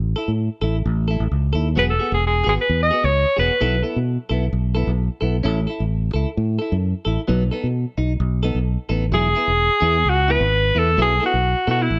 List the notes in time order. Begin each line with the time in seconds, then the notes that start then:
Already playing: A1
0.16 E4 A4
0.28 A2
0.61 A1 E4 A4
0.86 A1
1.08 E4 A4
1.20 A1
1.31 C#2
1.53 D#2 E4 A4
1.76 E1 F#3 B3 F#4 G#4 B4
1.90 A4
1.99 B3 F#4 G#4
2.12 E1 G#4
2.27 G#4
2.44 G#1 B3 F#4 G#4
2.49 G#4
2.61 B4
2.69 E2
2.83 D#5
2.91 B3 F#4 G#4
3.04 C#2 C#5
3.36 E1 B3 F#4 G#4 B4
3.60 B1 F#3 B3 E4 A4
3.83 B3 E4 A4
3.96 B2
4.29 B1 B3 E4 A4
4.53 B1
4.75 B3 E4 A4
4.87 B1
5.21 B1 B3 E4 A4
5.43 A1 C#4 E4 A4
5.67 E4 A4
5.80 A1
6.14 C#2 E4 A4
6.37 A2
6.59 E4 A4
6.72 F#2
7.05 A1 E4 A4
7.28 B1 F#3 B3 D#4, muted clean electric guitar stroke
7.51 B3 D#4 A4
7.64 B2
7.98 B1 D#4, muted clean electric guitar stroke
8.20 B1
8.43 B3 D#4 A4
8.55 B1
8.89 A1 B3 D#4 A4
9.12 E1 F#3 E4 G#4, muted clean electric guitar stroke
9.35 B3 E4 G#4
9.48 E1
9.80 E2 B3 E4 G#4
10.05 C#2 F#4
10.28 B3 E4 B4
10.41 G#1
10.75 E2 B3 E4 A4
10.97 B1 F#3 B3 E4 A4
11.02 G#4
11.20 B3 E4 A4
11.26 F#4
11.34 B1
11.67 B2 B3 E4 F#4 A4
11.82 E4
11.90 A1